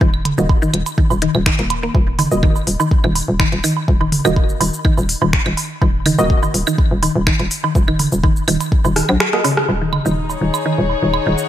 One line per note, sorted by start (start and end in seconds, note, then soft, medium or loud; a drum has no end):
0.01 0.33 D#1 loud
0.01 0.09 D#3 loud
0.01 kick loud
0.14 claves medium
0.25 closed hi-hat loud
0.25 mid tom medium
0.25 low woodblock soft
0.38 0.69 D#1 medium
0.38 0.43 D#3 medium
0.38 0.48 A#3 medium
0.38 0.48 F#4 medium
0.38 0.48 D#5 medium
0.38 shaker soft
0.49 kick loud
0.49 low woodblock medium
0.62 0.70 D#3 loud
0.62 shaker soft
0.74 0.83 D#1 medium
0.74 closed hi-hat loud
0.74 claves medium
0.86 closed hi-hat soft
0.86 low woodblock soft
0.86 shaker soft
0.98 1.03 D#3 medium
0.98 kick loud
1.10 1.28 D#1 loud
1.10 low woodblock medium
1.10 shaker soft
1.22 1.25 D#3 loud
1.22 closed hi-hat loud
1.35 1.52 D#1 loud
1.35 claves medium
1.46 1.52 D#3 loud
1.46 finger snap loud
1.46 kick loud
1.46 low woodblock soft
1.59 1.90 D#1 medium
1.59 1.62 A#3 medium
1.59 closed hi-hat soft
1.70 closed hi-hat loud
1.70 low woodblock medium
1.83 1.86 A#3 medium
1.95 2.26 D#1 loud
1.95 kick loud
1.95 low woodblock soft
2.19 2.24 D#3 medium
2.19 open hi-hat medium
2.19 mid tom medium
2.19 low woodblock medium
2.31 2.62 D#1 medium
2.31 2.42 A#3 medium
2.31 2.42 F#4 medium
2.31 2.42 D#5 medium
2.31 shaker soft
2.43 2.51 D#3 loud
2.43 kick loud
2.43 claves medium
2.56 low woodblock soft
2.56 shaker soft
2.67 2.77 D#1 medium
2.67 open hi-hat medium
2.80 2.85 D#3 medium
2.80 low woodblock medium
2.80 shaker soft
2.91 kick loud
3.04 3.22 D#1 loud
3.04 3.12 D#3 loud
3.04 claves medium
3.15 open hi-hat medium
3.15 low woodblock soft
3.28 3.46 D#1 medium
3.40 3.45 D#3 medium
3.40 finger snap loud
3.40 kick loud
3.40 low woodblock medium
3.52 3.61 D#1 medium
3.52 closed hi-hat soft
3.64 3.72 D#3 loud
3.64 open hi-hat medium
3.64 claves medium
3.64 shaker soft
3.77 low woodblock soft
3.88 4.20 D#1 loud
3.88 kick loud
4.01 4.06 D#3 medium
4.01 low woodblock medium
4.12 open hi-hat medium
4.12 mid tom medium
4.25 4.56 D#1 medium
4.25 4.33 D#3 loud
4.25 4.35 A#3 medium
4.25 4.35 F#4 medium
4.25 4.35 D#5 medium
4.25 claves medium
4.25 shaker soft
4.36 kick loud
4.36 low woodblock soft
4.49 shaker soft
4.61 4.70 D#1 medium
4.61 4.66 D#3 medium
4.61 open hi-hat medium
4.61 low woodblock medium
4.74 shaker soft
4.85 4.93 D#3 loud
4.85 kick loud
4.85 claves medium
4.97 5.15 D#1 loud
4.97 low woodblock soft
4.97 shaker soft
5.09 open hi-hat medium
5.22 5.39 D#1 medium
5.22 5.27 D#3 medium
5.22 low woodblock medium
5.33 finger snap loud
5.33 kick loud
5.46 5.55 D#1 medium
5.46 5.53 D#3 loud
5.46 closed hi-hat soft
5.46 claves medium
5.57 open hi-hat medium
5.57 low woodblock soft
5.82 6.13 D#1 loud
5.82 5.87 D#3 medium
5.82 kick loud
5.82 low woodblock medium
6.06 6.14 D#3 loud
6.06 open hi-hat medium
6.06 mid tom medium
6.06 claves medium
6.19 6.50 D#1 medium
6.19 6.29 A#3 medium
6.19 6.29 F#4 medium
6.19 6.29 D#5 medium
6.19 low woodblock soft
6.19 shaker soft
6.30 kick loud
6.43 6.48 D#3 medium
6.43 low woodblock medium
6.43 shaker soft
6.54 6.64 D#1 medium
6.54 open hi-hat medium
6.67 6.75 D#3 loud
6.67 claves medium
6.67 shaker soft
6.78 kick loud
6.78 low woodblock soft
6.91 7.09 D#1 loud
7.03 7.08 D#3 medium
7.03 open hi-hat medium
7.03 low woodblock medium
7.16 7.33 D#1 medium
7.27 7.35 D#3 loud
7.27 finger snap loud
7.27 kick loud
7.27 claves medium
7.40 7.48 D#1 medium
7.40 closed hi-hat soft
7.40 low woodblock soft
7.51 open hi-hat medium
7.51 shaker medium
7.64 7.69 D#3 medium
7.64 low woodblock medium
7.75 8.07 D#1 loud
7.75 kick loud
7.75 shaker soft
7.88 7.95 D#3 loud
7.88 claves medium
7.99 open hi-hat medium
7.99 mid tom medium
7.99 low woodblock soft
7.99 shaker soft
8.12 8.43 D#1 medium
8.12 shaker soft
8.24 8.29 D#3 medium
8.24 kick loud
8.24 low woodblock medium
8.36 shaker soft
8.48 8.57 D#1 medium
8.48 8.56 D#3 loud
8.48 open hi-hat medium
8.48 claves medium
8.61 closed hi-hat soft
8.61 low woodblock soft
8.61 shaker soft
8.72 kick loud
8.85 9.02 D#1 loud
8.85 8.90 D#3 medium
8.85 low woodblock medium
8.85 shaker soft
8.96 9.02 D#3 medium
8.96 cross-stick medium
8.96 open hi-hat medium
9.09 9.18 A#1 loud
9.09 9.16 F#3 medium
9.09 claves medium
9.20 finger snap loud
9.20 cross-stick medium
9.20 low woodblock soft
9.33 9.43 A#3 medium
9.33 9.43 F#4 medium
9.33 9.43 D#5 medium
9.33 cross-stick medium
9.33 closed hi-hat soft
9.44 9.53 C#3 loud
9.44 open hi-hat medium
9.44 low woodblock medium
9.57 cross-stick medium
9.69 10.00 D#1 medium
9.69 11.48 D#4 medium
9.69 low woodblock soft
9.82 9.86 D#3 medium
9.93 mid tom medium
9.93 claves medium
9.93 low woodblock medium
10.06 10.37 D#1 medium
10.06 10.13 D#3 medium
10.06 10.16 A#3 medium
10.06 10.16 F#4 medium
10.06 10.16 D#5 medium
10.06 shaker soft
10.26 11.48 G#4 medium
10.26 low woodblock soft
10.26 shaker soft
10.33 11.48 C#5 medium
10.41 10.51 D#1 medium
10.41 10.47 D#3 medium
10.54 claves medium
10.54 low woodblock medium
10.54 shaker soft
10.66 10.74 D#3 loud
10.78 10.96 D#1 medium
10.90 low woodblock soft
11.03 11.20 D#1 medium
11.03 11.07 D#3 medium
11.14 claves medium
11.14 low woodblock medium
11.25 11.35 D#1 medium
11.25 11.34 D#3 loud
11.25 11.48 F#5 medium
11.38 shaker soft